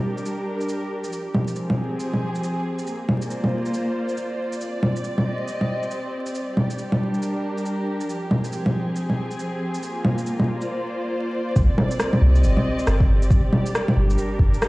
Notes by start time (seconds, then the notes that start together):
Already playing: G3 D4 G4 A#4 D5
0.17 shaker
0.26 shaker
0.61 shaker
0.69 shaker
1.04 shaker
1.13 F3, shaker
1.35 C4, low bongo
1.48 shaker
1.56 G#4, shaker
1.70 low bongo
2.00 shaker
2.13 low bongo
2.35 shaker
2.44 shaker
2.79 shaker
2.87 A#3, shaker
3.04 C5
3.09 low bongo
3.16 D5
3.20 F4, shaker
3.31 shaker
3.44 low bongo
3.66 shaker
3.74 shaker
4.09 shaker
4.17 shaker
4.53 shaker
4.61 C4, shaker
4.83 low bongo
4.96 shaker
5.03 G4, shaker
5.18 D#5, low bongo
5.48 shaker
5.61 low bongo
5.83 shaker
5.91 shaker
6.26 shaker
6.35 G3, shaker
6.57 low bongo
6.70 D4, shaker
6.79 shaker
6.92 low bongo
7.14 A#4, shaker
7.22 shaker
7.58 shaker
7.66 shaker
8.01 shaker
8.10 F3, shaker
8.24 C4 G#4
8.31 low bongo
8.44 shaker
8.53 shaker
8.66 low bongo
8.96 shaker
9.10 low bongo
9.31 shaker
9.39 shaker
9.75 shaker
9.82 A#3, shaker
9.89 F4
10.05 low bongo
10.18 shaker
10.26 shaker
10.40 low bongo
10.59 C5 D5, shaker
11.55 C2 C4, kick, shaker
11.78 low bongo
11.91 shaker
11.99 G4, cross-stick, shaker
12.06 D#5
12.13 low bongo
12.21 C2
12.35 shaker
12.43 G1, shaker
12.57 low bongo
12.79 shaker
12.87 G1, cross-stick, shaker
13.00 kick
13.22 shaker
13.30 G1 G3, kick, shaker
13.53 low bongo
13.60 D4
13.66 shaker
13.75 cross-stick, shaker
13.88 low bongo
13.96 G1
14.10 A#4, shaker
14.18 shaker
14.39 G1, kick
14.54 shaker
14.62 cross-stick, shaker